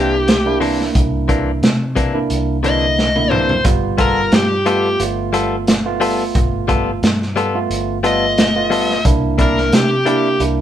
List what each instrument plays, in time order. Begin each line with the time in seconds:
Already playing: fingered electric bass C2, clean electric guitar C3 E3 A#3 D4, tine electric piano A#3 D4 E4, lead electric guitar G4
0.28 snare, closed hi-hat
0.46 tine electric piano A#3 D4 E4
0.60 clean electric guitar C3 E3 A#3 D4, open hi-hat
0.81 snare
0.95 fingered electric bass C2, kick, closed hi-hat
1.28 clean electric guitar C3 E3 A#3 D4, kick, closed hi-hat
1.62 fingered electric bass C3, snare, closed hi-hat
1.96 clean electric guitar C3 E3 A#3 D4, kick, closed hi-hat
2.14 tine electric piano A#3 D4 E4
2.30 fingered electric bass C2, closed hi-hat
2.63 clean electric guitar C3 E3 A#3 D4, tine electric piano D3 A#3 E4, lead electric guitar D#5, closed hi-hat
2.99 snare
3.16 tine electric piano D3 A#3 E4, high tom
3.30 clean electric guitar C3 E3 A#3 D4, lead electric guitar C5, mid tom
3.49 floor tom
3.64 fingered electric bass G1, tine electric piano G3 B3 F4, kick, closed hi-hat
3.98 clean electric guitar G3 B3 F4 A4, lead electric guitar A#4, kick, closed hi-hat
4.32 fingered electric bass G2, lead electric guitar G4, snare, closed hi-hat
4.66 clean electric guitar G3 B3 F4 A4, tine electric piano A3 B3 F4, lead electric guitar G4, closed hi-hat
4.99 fingered electric bass G1, tine electric piano A3 B3 F4, closed hi-hat
5.33 clean electric guitar G3 B3 F4 A4, closed hi-hat
5.67 snare, closed hi-hat
5.85 tine electric piano A3 B3 F4
6.00 clean electric guitar G3 B3 F4 A4, open hi-hat
6.35 fingered electric bass G1, kick, closed hi-hat
6.68 clean electric guitar G3 B3 F4 A4, kick, closed hi-hat
7.03 fingered electric bass G2, snare, closed hi-hat
7.22 snare
7.36 clean electric guitar G3 B3 F4 A4, closed hi-hat
7.55 tine electric piano A3 B3 F4
7.70 fingered electric bass G1, closed hi-hat
8.03 clean electric guitar G3 B3 F4 A4, tine electric piano A3 B3 F4, lead electric guitar D#5, closed hi-hat
8.38 snare, closed hi-hat
8.56 tine electric piano A3 B3 F4
8.70 clean electric guitar G3 B3 F4 A4, open hi-hat
8.90 snare
9.05 fingered electric bass C2, tine electric piano A#3 D4 E4, kick, closed hi-hat
9.38 clean electric guitar C3 A#3 D4 E4, lead electric guitar A#4, kick, closed hi-hat
9.58 snare
9.72 fingered electric bass C3, lead electric guitar G4, snare, closed hi-hat
10.05 clean electric guitar C3 A#3 D4 E4, tine electric piano A#3 D4 E4, lead electric guitar G4, closed hi-hat
10.40 fingered electric bass C2, tine electric piano A#3 D4 E4, closed hi-hat